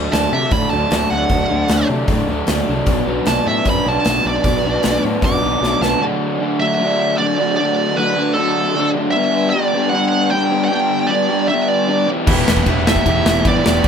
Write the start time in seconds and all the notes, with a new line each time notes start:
Already playing: D3 F#3 A3 D4
0.12 D2 D3 F#3 A3 D4 A5, snare, open hi-hat
0.33 C3 D3 F#3 A3 D4 E5
0.51 A2 D3 F#3 A3 D4 B5, kick, open hi-hat
0.70 D2 D3 F#3 A3 D4 A5
0.90 D2 D3 F#3 A3 D4, snare, open hi-hat
1.10 D2 D3 F#3 A3 D4 F#5
1.29 D2 D3 F#3 A3 D4, kick, open hi-hat
1.50 D2 D3 F#3 A3 D4
1.68 D2 D3 F#3 A3 D4, snare, open hi-hat
1.89 C3 D3 F#3 A3 D4
2.08 A2 D3 F#3 A3 D4, kick, open hi-hat
2.28 D2 D3 F#3 A3 D4
2.47 D2 D3 F#3 A3 D4, snare, open hi-hat
2.68 C2 D3 F#3 A3 D4
2.86 B1 B2 F#3 B3 D4, kick, open hi-hat
3.06 B1 B2 F#3 B3 D4
3.26 B1 B2 F#3 B3 D4 A5, snare, open hi-hat
3.47 A2 B2 F#3 B3 D4 E5
3.65 F#2 B2 F#3 B3 D4, kick, open hi-hat
3.70 B5
3.85 B1 B2 F#3 B3 D4 A5
4.05 B1 B2 F#3 B3 D4, snare, open hi-hat
4.25 B1 B2 F#3 B3 D4 D5
4.44 B1 B2 F#3 B3 D4, kick, open hi-hat
4.64 B1 B2 F#3 B3 D4
4.83 B1 B2 F#3 B3 D4, snare, open hi-hat
5.03 A2 B2 F#3 B3 D4
5.22 F#2 B2 F#3 B3 D4 D6, kick, open hi-hat
5.42 B1 B2 F#3 B3 D4
5.61 B1 B2 F#3 B3 D4, snare
5.81 B1 B2 F#3 B3 D4 A5, snare
6.00 D3 F#3 A3 D4 F#4
6.39 D3 F#3 A3 D4 F#4
6.59 D3 F#3 A3 D4 F#4 E5
6.79 D3 F#3 A3 D4 F#4
7.18 D3 F#3 A3 D4 F#4 D5
7.38 D3 F#3 A3 D4 F#4
7.57 D3 F#3 A3 D4 F#4 D5
7.97 D3 F#3 A3 D4 F#4 B4
8.16 D3 F#3 A3 D4 F#4
8.34 D3 F#3 A3 D4 A4
8.38 F#4
8.75 D3 F#3 A3 D4 F#4
8.94 D3 F#3 A3 D4 F#4
9.11 G3 E5
9.15 B3 D4 G4
9.50 G3 D5
9.54 B3 D4 G4
9.73 G3 B3 D4 G4
9.89 G3 F#5
9.93 B3 D4 G4
10.09 F#5
10.30 G3 B3 D4 G4 G5
10.50 G3 B3 D4 G4
10.64 F#5 G5
10.70 G3 B3 D4 G4
11.07 G3 B3 D4 D5
11.11 G4
11.29 G3 B3 D4 G4
11.48 G3 B3 D4 G4 E5
11.68 D5
11.88 G3 B3 D4 G4
12.08 E3 B3 E4 G4
12.27 E1 E3 B3 E4 G4 B4, kick, crash
12.48 E1, snare
12.57 kick
12.66 E1 E3 B3 E4 G4, kick, ride
12.86 E3 B3 E4 G4 E5, snare
12.96 kick
13.06 E1 E3 B3 E4 G4, kick, ride
13.26 E1, snare
13.45 G1 E3 B3 E4 G4 D5, kick, ride
13.64 E1 E3 B3 E4 G4, snare
13.84 E1 E3 B3, kick, ride